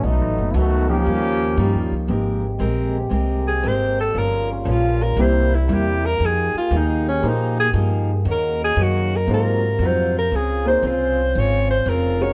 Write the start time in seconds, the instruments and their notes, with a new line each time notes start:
0.03 upright bass B1, steel-string acoustic guitar B2 F#3 A3 D#4, trombone section F#3 A3 B3 D#4
0.21 upright bass A1
0.38 upright bass F#1
0.54 upright bass C#2, steel-string acoustic guitar B2 F#3 A3 D#4, trombone section D#3 A3 B3 F#4
0.89 trombone section F3 A#3 C#4 G4, upright piano F3 A#3 D#4 G4
1.05 upright bass D#2, steel-string acoustic guitar D#3 G3 C#4 F4
1.56 upright bass G2, steel-string acoustic guitar D#3 G3 C#4 F4, upright piano F3 A#3 D#4 G4
1.75 upright bass D#2
1.92 upright bass C#2
2.07 upright bass G#1, trombone section C3 G#3 A#3 G4, upright piano F3 A#3 D#4 G4, steel-string acoustic guitar G#3 C4 G4 A#4
2.59 upright bass A#1, steel-string acoustic guitar G#3 C4 G4 A#4
3.09 upright bass C2, steel-string acoustic guitar G#3 C4 G4 A#4
3.48 alto saxophone G#4
3.62 upright bass G#1, steel-string acoustic guitar G#3 C4 G4 A#4
3.67 alto saxophone C5
4.01 alto saxophone A4
4.13 upright bass G1, steel-string acoustic guitar G2 F3 A#3 C#4, trombone section C#3 G3 F4
4.18 alto saxophone A#4
4.52 alto saxophone C#4
4.64 upright bass A#1, steel-string acoustic guitar G2 F3 A#3 C#4
4.71 alto saxophone F4
5.02 alto saxophone A#4
5.17 upright bass C2, steel-string acoustic guitar C3 G3 A#3 E4, trombone section C3 E4, upright piano A#3 C4 E4 G4
5.21 alto saxophone C5
5.55 alto saxophone E4
5.68 upright bass E2, steel-string acoustic guitar C3 G3 A#3 E4
5.73 alto saxophone G4
6.05 alto saxophone A#4
6.19 upright bass F2, trombone section D#3 G4 G#4, steel-string acoustic guitar F3 A#3 D#4 G#4
6.25 alto saxophone G#4
6.54 alto saxophone F4, muted upright bass stroke
6.71 upright bass D#2, steel-string acoustic guitar F3 A#3 D#4 G#4
6.77 alto saxophone D#4
7.08 alto saxophone C#4
7.22 upright bass A#2, steel-string acoustic guitar F3 A#3 D#4 G#4, upright piano A#3 D#4 G#4 C5
7.29 alto saxophone D#4
7.60 alto saxophone G#4
7.73 upright bass G2, steel-string acoustic guitar F3 A#3 D#4 G#4
8.24 upright bass D#2, trombone section C#3 D#4 F#4, steel-string acoustic guitar D#3 A#3 C#4 F#4
8.31 alto saxophone A#4
8.64 alto saxophone G#4
8.76 upright bass F#2, steel-string acoustic guitar D#3 A#3 C#4 F#4
8.82 alto saxophone F#4
9.16 alto saxophone A#4
9.27 upright bass G#2, steel-string acoustic guitar G#2 F#3 C4 F4, trombone section C3 F4, upright piano A#3 D#4 G#4 C5
9.34 alto saxophone A#4
9.79 upright bass F2, steel-string acoustic guitar G#2 F#3
9.83 steel-string acoustic guitar C4 F4, alto saxophone C5
10.18 alto saxophone A#4
10.32 upright bass C#2, steel-string acoustic guitar C#3 C4 F4 G#4, trombone section C4 C#4, alto saxophone G#4
10.65 upright piano A#3 D#4 G#4 C5, alto saxophone C5
10.83 upright bass C2, steel-string acoustic guitar C#3 C4 F4 G#4
10.87 alto saxophone C5
11.35 upright bass G#1, steel-string acoustic guitar C#3 C4 F4 G#4, alto saxophone C#5
11.71 alto saxophone C5
11.86 upright bass F1, steel-string acoustic guitar C#3 C4 F4 G#4, alto saxophone A#4
12.20 upright piano G#3 C#4 F#4 A#4, alto saxophone C#5